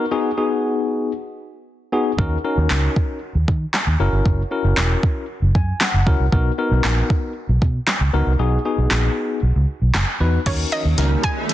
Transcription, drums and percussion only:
2.19 kick loud
2.70 snare medium
2.70 clap loud
2.96 kick medium
3.48 kick medium
3.74 snare medium
3.74 clap loud
4.26 kick loud
4.77 snare medium
4.77 clap loud
5.03 kick medium
5.55 kick medium
5.81 snare medium
5.81 clap loud
6.07 kick medium
6.32 kick loud
6.84 snare medium
6.84 clap loud
7.10 kick medium
7.62 kick medium
7.87 snare medium
7.87 clap loud
8.91 snare medium
8.91 clap loud
9.94 snare medium
9.94 clap loud
10.46 kick loud
10.46 snare soft
10.46 closed hi-hat medium
10.46 crash medium
10.72 closed hi-hat medium
10.98 snare medium
10.98 closed hi-hat medium
11.23 kick medium
11.23 closed hi-hat medium
11.49 snare medium
11.49 closed hi-hat medium

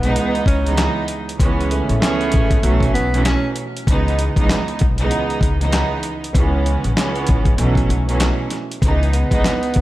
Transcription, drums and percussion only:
0.03 closed hi-hat soft
0.16 closed hi-hat medium
0.35 closed hi-hat soft
0.46 kick medium
0.46 closed hi-hat medium
0.66 closed hi-hat soft
0.77 snare loud
0.77 clap medium
0.77 closed hi-hat medium
1.08 closed hi-hat medium
1.29 closed hi-hat medium
1.40 kick loud
1.40 closed hi-hat medium
1.61 closed hi-hat soft
1.71 closed hi-hat medium
1.89 closed hi-hat soft
2.02 snare loud
2.02 clap medium
2.02 closed hi-hat medium
2.21 closed hi-hat soft
2.32 kick loud
2.32 closed hi-hat medium
2.50 kick medium
2.50 closed hi-hat soft
2.63 closed hi-hat medium
2.80 kick medium
2.80 closed hi-hat soft
2.95 closed hi-hat medium
3.14 closed hi-hat soft
3.25 snare loud
3.25 clap medium
3.25 closed hi-hat medium
3.56 closed hi-hat medium
3.77 closed hi-hat medium
3.87 kick loud
3.87 closed hi-hat medium
4.08 closed hi-hat soft
4.19 closed hi-hat medium
4.36 kick medium
4.36 closed hi-hat soft
4.49 snare loud
4.49 clap medium
4.49 closed hi-hat medium
4.68 closed hi-hat soft
4.79 kick loud
4.79 closed hi-hat medium
4.98 closed hi-hat soft
5.11 closed hi-hat medium
5.30 closed hi-hat soft
5.41 kick medium
5.41 closed hi-hat medium
5.61 closed hi-hat soft
5.72 snare loud
5.72 clap medium
5.72 closed hi-hat medium
6.03 closed hi-hat medium
6.24 closed hi-hat medium
6.35 kick loud
6.35 closed hi-hat medium
6.66 closed hi-hat medium
6.84 closed hi-hat soft
6.97 snare loud
6.97 clap medium
6.97 closed hi-hat medium
7.15 closed hi-hat soft
7.27 kick loud
7.27 closed hi-hat medium
7.45 kick medium
7.45 closed hi-hat soft
7.58 closed hi-hat medium
7.75 kick medium
7.75 closed hi-hat soft
7.90 closed hi-hat medium
8.09 closed hi-hat soft
8.20 snare loud
8.20 clap medium
8.20 closed hi-hat medium
8.50 snare soft
8.50 closed hi-hat medium
8.71 closed hi-hat medium
8.82 kick loud
8.82 closed hi-hat medium
9.03 closed hi-hat soft
9.13 closed hi-hat medium
9.31 kick medium
9.31 closed hi-hat medium
9.44 snare loud
9.44 clap medium
9.44 closed hi-hat medium
9.63 closed hi-hat soft
9.74 kick loud
9.74 closed hi-hat medium

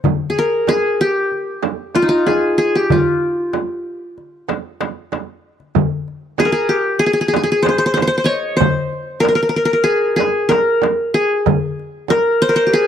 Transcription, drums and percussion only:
0.04 darbuka dum medium
0.04 frame drum medium
0.36 darbuka ka soft
0.67 darbuka tek medium
0.67 frame drum medium
1.00 darbuka ka soft
1.32 darbuka ka soft
1.63 darbuka tek medium
1.63 frame drum medium
1.95 darbuka tek medium
1.95 frame drum medium
2.27 darbuka tek medium
2.27 frame drum medium
2.75 darbuka ka soft
2.90 darbuka dum medium
2.90 frame drum medium
3.53 darbuka tek medium
3.53 frame drum medium
4.18 darbuka ka soft
4.49 darbuka tek medium
4.49 frame drum medium
4.81 darbuka tek medium
4.81 frame drum medium
5.12 darbuka tek medium
5.12 frame drum medium
5.60 darbuka ka soft
5.75 frame drum medium
5.75 darbuka dum medium
6.08 darbuka ka soft
6.38 darbuka tek medium
6.38 frame drum medium
6.71 darbuka ka soft
7.34 darbuka tek medium
7.34 frame drum medium
7.65 darbuka tek medium
7.65 frame drum medium
7.97 darbuka tek medium
7.97 frame drum medium
8.60 frame drum medium
8.60 darbuka dum medium
8.93 darbuka ka soft
9.23 darbuka tek medium
9.23 frame drum medium
9.57 darbuka ka soft
10.19 darbuka tek medium
10.19 frame drum medium
10.50 darbuka tek medium
10.50 frame drum medium
10.82 darbuka tek medium
10.82 frame drum medium
11.46 frame drum medium
11.46 darbuka dum medium
11.79 darbuka ka soft
12.08 darbuka tek medium
12.08 frame drum medium
12.42 darbuka ka soft

